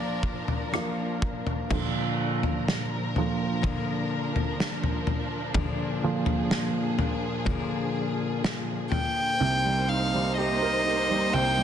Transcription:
0.00 1.67 A#2 medium
0.00 0.71 F3 medium
0.00 1.67 F3 medium
0.00 0.73 A#3 medium
0.00 0.74 A#3 soft
0.00 0.74 D4 medium
0.00 0.74 D4 soft
0.00 1.67 D4 medium
0.00 0.75 F4 medium
0.00 0.75 A#4 medium
0.00 1.67 A#4 medium
0.00 0.73 D5 medium
0.23 kick medium
0.48 floor tom medium
0.72 1.71 F3 medium
0.72 1.72 A#3 medium
0.72 1.69 A#3 soft
0.72 1.73 D4 medium
0.72 1.69 D4 soft
0.72 1.69 F4 medium
0.72 1.74 A#4 medium
0.72 cross-stick loud
1.22 kick medium
1.47 floor tom medium
1.69 3.60 A#2 medium
1.69 2.36 A#2 soft
1.69 3.62 D3 medium
1.69 2.36 D3 soft
1.69 3.62 F3 medium
1.69 9.37 F3 medium
1.69 2.36 F3 soft
1.69 3.65 A#3 medium
1.69 9.37 D4 medium
1.69 5.52 A#4 medium
1.69 kick loud
1.69 floor tom loud
1.69 crash medium
1.74 3.65 D4 medium
1.74 3.66 A#4 medium
2.43 floor tom medium
2.68 snare medium
3.16 3.61 A#2 soft
3.16 3.61 D3 soft
3.16 3.61 F3 soft
3.16 floor tom medium
3.62 5.53 A#2 medium
3.62 5.53 D3 medium
3.62 5.54 F3 medium
3.62 5.55 A#3 medium
3.62 kick medium
3.62 floor tom medium
3.66 5.55 D4 medium
3.66 5.56 A#4 medium
4.36 floor tom medium
4.60 snare medium
4.84 floor tom medium
5.07 floor tom medium
5.54 6.98 A#2 medium
5.54 6.98 D3 medium
5.54 6.99 F3 medium
5.54 7.00 A#3 medium
5.54 6.98 D4 medium
5.54 9.37 G#4 medium
5.54 6.98 A#4 medium
5.54 kick loud
5.54 floor tom loud
6.03 6.67 A#2 medium
6.03 6.67 D3 soft
6.03 6.67 F3 medium
6.26 floor tom medium
6.51 snare loud
6.98 7.46 F3 soft
6.98 7.47 A#3 soft
6.98 7.47 D4 soft
6.98 7.46 A#4 soft
6.98 floor tom medium
7.45 9.39 A#2 medium
7.45 9.40 D3 medium
7.45 9.40 F3 medium
7.45 9.92 A#3 medium
7.45 kick medium
7.45 floor tom medium
7.49 9.41 D4 medium
7.49 9.92 A#4 medium
8.44 snare loud
8.91 9.90 G5 loud
8.91 floor tom medium
9.39 11.32 C2 medium
9.39 11.32 C3 medium
9.39 11.63 A#3 medium
9.39 11.63 D#4 medium
9.39 11.63 C5 medium
9.65 10.12 G3 medium
9.89 11.63 D#4 medium
9.89 10.36 F5 medium
10.14 11.09 G3 medium
10.37 10.84 G4 medium
10.37 11.35 D#5 loud
10.62 11.63 A#4 medium
10.86 11.63 G4 medium
11.10 11.56 G3 medium
11.33 11.63 C2 medium
11.33 11.63 C3 medium
11.33 11.63 G5 loud
11.58 11.63 G3 medium

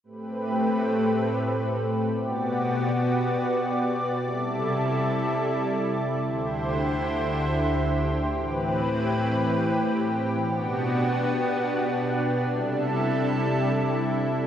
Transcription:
0.04 2.09 A2 medium
0.04 2.09 A3 medium
0.04 2.09 C4 medium
0.04 2.09 G4 medium
0.04 2.09 B4 medium
2.11 4.15 B2 medium
2.11 4.15 B3 medium
2.11 4.15 F#4 medium
2.11 4.15 G4 medium
2.11 6.20 D5 medium
4.17 6.22 C3 medium
4.17 6.22 G3 medium
4.17 6.22 E4 medium
4.17 6.22 A4 medium
6.24 8.29 D2 medium
6.24 8.29 D3 medium
6.24 8.29 E4 medium
6.24 12.41 G4 medium
6.24 8.29 C5 medium
8.31 10.36 A2 medium
8.31 10.36 E3 medium
8.31 10.36 C4 medium
8.31 10.36 B4 medium
10.38 12.43 B2 medium
10.38 12.43 B3 medium
10.38 14.47 D4 medium
10.38 12.43 F#4 medium
12.45 14.47 C3 medium
12.45 14.47 G3 medium
12.45 14.47 E4 medium
12.45 14.47 A4 medium

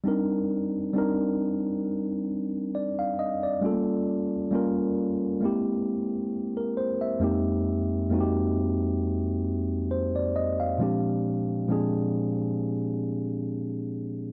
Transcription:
0.04 0.74 G3 medium
0.04 0.75 C4 medium
0.04 0.76 D4 medium
0.04 0.76 D#4 medium
0.08 0.77 A#4 medium
0.94 2.31 G3 medium
0.94 2.31 C4 medium
0.94 2.32 D4 medium
0.94 2.32 D#4 medium
0.98 2.33 A#4 medium
2.75 2.97 D5 soft
2.99 3.18 F5 medium
3.19 3.42 D#5 medium
3.43 3.86 D5 medium
3.61 4.32 G3 medium
3.61 3.70 A3 soft
3.61 4.33 C#4 medium
3.61 4.34 F4 medium
3.66 4.36 A#3 medium
3.66 4.35 A4 medium
4.51 5.41 G3 medium
4.51 5.41 A#3 medium
4.51 5.42 C#4 medium
4.51 5.43 F4 medium
4.55 5.44 A#4 medium
5.41 6.86 G#3 medium
5.41 6.86 A#3 medium
5.41 6.87 C4 medium
5.41 6.87 E4 medium
5.45 6.88 G4 medium
6.57 6.76 A#4 medium
6.77 7.00 C5 medium
7.01 7.44 E5 medium
7.20 7.91 F2 medium
7.20 7.91 G#3 medium
7.20 7.92 A#3 medium
7.20 7.92 C4 medium
7.20 7.92 D#4 medium
7.24 7.93 G4 medium
8.09 9.47 F2 medium
8.09 9.47 G#3 medium
8.09 9.48 A#3 medium
8.09 9.48 C4 medium
8.09 9.49 D#4 medium
8.14 8.20 F#4 medium
8.21 9.52 G4 medium
9.91 10.14 C5 medium
10.16 10.35 D5 medium
10.36 10.58 D#5 medium
10.60 11.02 F5 medium
10.78 11.49 A#2 medium
10.78 11.50 F3 medium
10.78 11.50 G#3 medium
10.78 11.51 C4 medium
10.78 11.51 D4 medium
10.83 11.51 G4 medium
11.68 13.05 A#2 medium
11.68 13.06 F3 medium
11.68 13.06 G#3 medium
11.68 13.06 C4 medium
11.68 13.07 D4 medium
11.72 13.07 G#4 medium

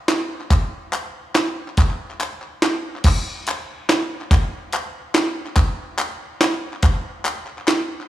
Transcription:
0.08 snare medium
0.08 clap loud
0.08 closed hi-hat medium
0.41 clap soft
0.51 kick loud
0.51 clap medium
0.51 closed hi-hat medium
0.93 clap loud
0.93 closed hi-hat medium
1.35 snare medium
1.35 clap loud
1.35 closed hi-hat medium
1.68 clap soft
1.77 kick loud
1.77 clap medium
1.77 closed hi-hat medium
1.90 clap soft
2.11 clap soft
2.20 clap medium
2.20 closed hi-hat medium
2.42 clap soft
2.62 snare medium
2.62 clap loud
2.62 closed hi-hat medium
2.96 clap soft
3.04 kick loud
3.04 clap loud
3.04 closed hi-hat medium
3.04 crash loud
3.47 clap loud
3.47 closed hi-hat medium
3.89 snare loud
3.89 clap loud
3.89 closed hi-hat medium
4.21 clap soft
4.31 kick loud
4.31 clap loud
4.31 closed hi-hat medium
4.73 clap loud
4.73 closed hi-hat medium
5.15 snare loud
5.15 clap loud
5.15 closed hi-hat medium
5.46 clap soft
5.56 kick loud
5.56 clap loud
5.56 closed hi-hat medium
5.98 clap loud
5.98 closed hi-hat medium
6.41 snare medium
6.41 clap loud
6.41 closed hi-hat medium
6.73 clap soft
6.83 kick loud
6.83 clap loud
6.83 closed hi-hat medium
7.25 clap loud
7.25 closed hi-hat medium
7.47 clap soft
7.58 clap soft
7.68 snare loud
7.68 clap loud
7.68 closed hi-hat medium
8.01 clap soft

